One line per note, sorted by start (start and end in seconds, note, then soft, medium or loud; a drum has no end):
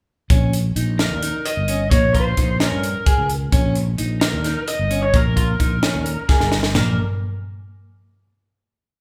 0.30 0.73 A#1 medium
0.30 0.53 C#4 medium
0.30 kick loud
0.30 closed hi-hat medium
0.53 closed hi-hat medium
0.76 1.08 A#1 medium
0.76 0.99 D#4 medium
0.76 closed hi-hat medium
0.99 1.47 A#4 medium
0.99 snare medium
0.99 closed hi-hat medium
1.11 1.32 D#2 medium
1.22 1.46 D#4 medium
1.22 closed hi-hat medium
1.45 1.91 D#5 medium
1.45 closed hi-hat medium
1.57 1.89 G1 medium
1.68 1.80 C#4 medium
1.68 closed hi-hat medium
1.91 2.35 A#1 medium
1.91 2.03 A#3 medium
1.91 2.14 C#5 medium
1.91 kick medium
1.91 closed hi-hat medium
2.14 2.26 F4 medium
2.14 2.62 C5 medium
2.14 kick medium
2.14 closed hi-hat soft
2.37 2.70 A#1 medium
2.37 2.49 D#4 medium
2.37 kick medium
2.37 closed hi-hat medium
2.60 2.84 C#4 medium
2.60 3.26 A#4 medium
2.60 snare medium
2.60 closed hi-hat medium
2.72 2.94 G2 medium
2.83 closed hi-hat soft
3.06 3.30 G#4 medium
3.06 kick medium
3.06 closed hi-hat medium
3.18 3.51 C#2 medium
3.30 closed hi-hat soft
3.52 3.96 A#1 medium
3.52 3.76 C#4 medium
3.52 kick medium
3.52 closed hi-hat medium
3.75 closed hi-hat soft
3.98 4.31 A#1 medium
3.98 4.22 D#4 medium
3.98 closed hi-hat medium
4.21 4.64 A#4 medium
4.21 snare medium
4.21 closed hi-hat medium
4.33 4.55 D#2 medium
4.44 4.68 D#4 medium
4.44 snare soft
4.44 closed hi-hat medium
4.68 5.02 D#5 medium
4.68 closed hi-hat medium
4.79 5.12 G1 medium
4.91 5.02 C#4 medium
4.91 closed hi-hat medium
5.03 5.14 C#5 medium
5.14 5.57 A#1 medium
5.14 5.25 A#3 medium
5.14 6.48 A#4 medium
5.14 kick medium
5.14 closed hi-hat medium
5.36 5.48 F4 medium
5.36 kick medium
5.36 closed hi-hat medium
5.60 5.92 A#1 medium
5.60 5.71 D#4 medium
5.60 kick medium
5.60 closed hi-hat medium
5.82 6.06 C#4 medium
5.82 snare medium
5.82 closed hi-hat medium
5.95 6.16 D#2 medium
6.06 closed hi-hat medium
6.29 6.52 G#4 medium
6.29 kick loud
6.29 snare soft
6.40 6.73 G1 medium
6.40 snare medium
6.52 snare medium
6.63 snare medium
6.74 6.97 A#1 medium
6.74 6.96 A#3 medium
6.74 6.97 A#4 medium
6.74 snare medium
6.74 floor tom medium
6.74 splash medium